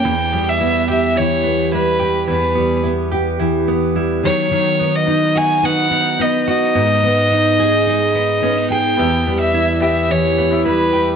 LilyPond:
<<
  \new Staff \with { instrumentName = "Violin" } { \time 4/4 \key e \lydian \tempo 4 = 108 g''8. e''8. e''8 cis''4 b'4 | b'4 r2 r8 cis''8~ | cis''8. dis''8. gis''8 fis''4 dis''8 dis''8~ | dis''2.~ dis''8 g''8~ |
g''8. e''8. e''8 cis''4 b'4 | }
  \new Staff \with { instrumentName = "Upright piano" } { \time 4/4 \key e \lydian r1 | r1 | r1 | r1 |
<b e' g' e''>4 r8 <b e' g' e''>8. r8 <b e' g' e''>8. r8 | }
  \new Staff \with { instrumentName = "Clean electric guitar" } { \time 4/4 \key e \lydian e8 b8 e'8 g'8 e'8 b8 e'8 g'8 | e8 b8 e'8 g'8 e'8 b8 e'8 fis8 | fis8 b8 dis'8 fis'8 dis'8 b8 dis'8 fis'8 | b8 b8 dis'8 gis'8 dis'8 b8 cis'16 dis'16 gis'8 |
b8 b8 e'8 g'8 e'8 b8 e'8 g'8 | }
  \new Staff \with { instrumentName = "Steel-string acoustic guitar" } { \time 4/4 \key e \lydian e,8 g8 b8 g'8 e8 b8 g8 g'8 | e,8 g8 b8 g'8 e8 b8 g8 dis8 | dis8 b8 dis'8 fis'8 b8 dis'8 b8 fis'8 | gis,8 b8 dis'8 gis'8 gis8 dis'8 b8 gis'8 |
e,8 g8 e'8 g'8 e8 e'8 g8 g'8 | }
>>